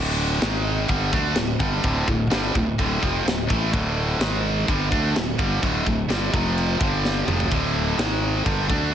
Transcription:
Already playing: fingered electric bass D1, distorted electric guitar D2 A2 D3
0.40 fingered electric bass G#1, distorted electric guitar G#2 D#3 G#3, snare, crash
0.88 fingered electric bass G1, distorted electric guitar G2 D3 G3, kick, crash
1.12 fingered electric bass D2, distorted electric guitar D3 A3 D4, kick
1.35 fingered electric bass D1, distorted electric guitar D2 A2, snare, crash
1.60 fingered electric bass G1, distorted electric guitar G2 D3 G3, kick
1.83 fingered electric bass D1, distorted electric guitar D2 A2 D3, kick, crash
2.07 fingered electric bass D1, distorted electric guitar D2 A2, kick
2.30 fingered electric bass G1, distorted electric guitar G2 D3 G3, snare, crash
2.54 fingered electric bass D1, distorted electric guitar D2 A2, kick
2.78 fingered electric bass D1, distorted electric guitar D2 A2 D3, kick, crash
3.02 fingered electric bass F1, distorted electric guitar F2 C3 F3, kick
3.26 fingered electric bass D1, distorted electric guitar D2 A2, snare, crash
3.48 fingered electric bass A1, distorted electric guitar A2 E3 A3, kick
3.72 fingered electric bass D1, distorted electric guitar D2 A2 D3, kick, crash
4.19 fingered electric bass G#1, distorted electric guitar G#2 D#3 G#3, snare, crash
4.68 fingered electric bass G1, distorted electric guitar G2 D3 G3, kick, crash
4.90 fingered electric bass D2, distorted electric guitar D3 A3 D4, kick
5.15 fingered electric bass D1, distorted electric guitar D2 A2, snare, crash
5.38 fingered electric bass G1, distorted electric guitar G2 D3 G3, kick
5.61 fingered electric bass D1, distorted electric guitar D2 A2 D3, kick, crash
5.86 fingered electric bass D1, distorted electric guitar D2 A2, kick
6.09 fingered electric bass G1, distorted electric guitar G2 D3 G3, snare, crash
6.33 fingered electric bass F1, distorted electric guitar F2 C3 F3, kick
6.58 crash
6.79 fingered electric bass G1, distorted electric guitar G2 D3 G3, kick
7.05 snare
7.26 fingered electric bass F1, distorted electric guitar F2 C3 F3, mid tom
7.40 floor tom
7.49 fingered electric bass D1, distorted electric guitar D2 A2 D3, kick, crash
7.97 fingered electric bass G#1, distorted electric guitar G#2 D#3 G#3, snare, crash
8.44 fingered electric bass G1, distorted electric guitar G2 D3 G3, kick, crash
8.68 fingered electric bass D2, distorted electric guitar D3 A3 D4, kick

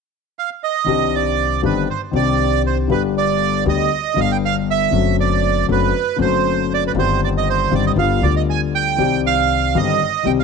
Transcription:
0.39 bandoneon F5
0.64 bandoneon D#5
0.84 grand piano C2 C3 D#3 C4 D4, upright bass C2
0.89 grand piano G4
1.15 bandoneon D5
1.62 grand piano G1 G2 D#3 C4 D4 G4, upright bass G1, bandoneon B4
1.90 bandoneon C5
2.11 upright bass C2, grand piano C2 C3 D#3 C4 D4 G4
2.15 bandoneon D5
2.66 bandoneon C5
2.88 upright bass G1, grand piano G1 G2 D3 G3 B3 G4, bandoneon B4
3.18 bandoneon D5
3.65 grand piano D2 D3 G3 B3 G4, upright bass D2, bandoneon D#5
4.14 grand piano G1 G2 D3 G3 B3, upright bass G1
4.18 grand piano G4, bandoneon F5
4.32 bandoneon G5
4.45 bandoneon F5
4.71 bandoneon E5
4.91 upright bass F#1, grand piano F#2 D3 F#3 A3 C4 F#4
5.20 bandoneon D5
5.68 upright bass F#1, grand piano F#2 D3 F#3 A3 C4 F#4, bandoneon B4
6.16 upright bass F#1, grand piano F#2 D3 F#3 A3 C4
6.21 grand piano F#4, bandoneon C5
6.74 bandoneon D5
6.87 bandoneon B4
6.93 upright bass G1, grand piano G1 G2 D#3 G3 C4
6.98 grand piano G4, bandoneon C5
7.24 bandoneon D5
7.37 bandoneon D#5
7.50 bandoneon C5
7.71 upright bass G1, grand piano G1 G2 D#3 G3 C4 G4, bandoneon D5
7.87 bandoneon D#5
7.96 upright bass G1, grand piano G1 G2 D3 G3 B3 F4, bandoneon F5
8.21 upright bass D2, grand piano D2 D3 G3 B3 F4, bandoneon D5
8.36 bandoneon D#5
8.50 bandoneon G#5
8.75 bandoneon G5
8.96 grand piano C2 C3 D#3 G3 C4, upright bass C2
9.01 grand piano G4
9.26 bandoneon F5
9.75 grand piano G1 G2 D#3 G3 C4 G4, upright bass G1, bandoneon D#5
10.23 grand piano C2 C3 D#3 G3 C4 G4, upright bass C2, bandoneon G5
10.39 bandoneon F5

